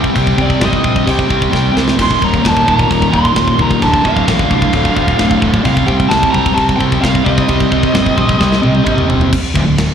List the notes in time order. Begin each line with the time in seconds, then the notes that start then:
Already playing: C3 G3 C4 G5
0.04 kick
0.14 C2 C3 G3 C4, kick, crash
0.27 kick
0.38 C2 C3 G3 C4, kick
0.42 D5
0.50 kick
0.60 G1 C3 G3 C4, kick, snare, crash
0.65 D#5
0.73 kick
0.84 A#1 C3 G3 C4, kick
0.96 kick
1.06 C2 C3 G3 C4 G5, kick, crash
1.19 kick
1.29 C2 C3 G3 C4, kick
1.42 kick
1.50 C2 C3 G3 C4, kick
1.55 snare
1.73 C2 C3 G3 C4, snare
1.88 snare
1.96 D#1 D#2 A#2 D#3, kick, crash
2.02 C6
2.11 kick
2.20 D#1 D#2 A#2 D#3, kick
2.25 A#5
2.34 kick
2.42 D#1 D#2 A#2 D#3, kick, snare, crash
2.47 A5
2.57 kick
2.66 D#1 D#2 A#2 D#3, kick
2.70 A#5
2.79 kick
2.88 D#1 D#2 A#2 D#3, kick, crash
3.02 kick
3.11 D#1 D#2 A#2 D#3 C6, kick
3.25 kick
3.33 D#1 D#2 A#2 D#3, kick, snare, crash
3.48 kick
3.57 C2 D#2 A#2 D#3, kick
3.62 A#5
3.71 kick
3.81 D1 D2 A2 D3 A5, kick, crash
3.94 kick
4.04 D1 D2 A2 D3 F5, kick
4.17 kick
4.27 A1 D2 A2 D3, kick, snare, crash
4.39 kick
4.49 C2 D2 A2 D3, kick
4.62 kick
4.73 D1 D2 A2 D3, kick, crash
4.85 kick
4.96 D1 D2 A2 D3, kick
5.08 kick
5.18 D1 D2 A2 D3, kick, snare, crash
5.31 kick
5.41 D1 D2 A2 D3, kick
5.54 kick
5.64 C2 C3 G3 C4 F5, kick, crash
5.77 kick
5.86 C2 C3 G3 C4 G5, kick
6.00 kick
6.09 C2 C3 G3 C4 A5, kick, snare, crash
6.23 kick
6.31 C2 C3 G3 C4 A#5, kick
6.46 kick
6.54 C2 C3 G3 C4 A5, kick, crash
6.69 kick
6.76 C3 G3 C4 G5
6.80 C2, kick
6.92 kick
7.00 C2 C3 G3 C4 F5, kick
7.04 snare, crash
7.15 kick
7.24 C2 C3 G3 C4 D#5, kick
7.38 kick
7.48 C2 C3 G3 C4, kick, crash
7.60 kick
7.71 C2 C3 G3 C4, kick
7.83 kick
7.93 G1 C3 G3 C4, kick, snare, crash
8.06 kick
8.17 A#1 C3 G3 C4, kick
8.29 kick
8.38 C2 C3 G3 C4, kick, snare
8.52 snare
8.62 C2 C3 G3 C4, high tom
8.75 high tom
8.83 C2 C3 G3 C4, kick, mid tom
8.98 mid tom
9.07 D#1 C3 G3 C4, floor tom
9.21 floor tom
9.32 kick, crash
9.54 D1 D2, kick, crash
9.66 D1 D2
9.78 snare, crash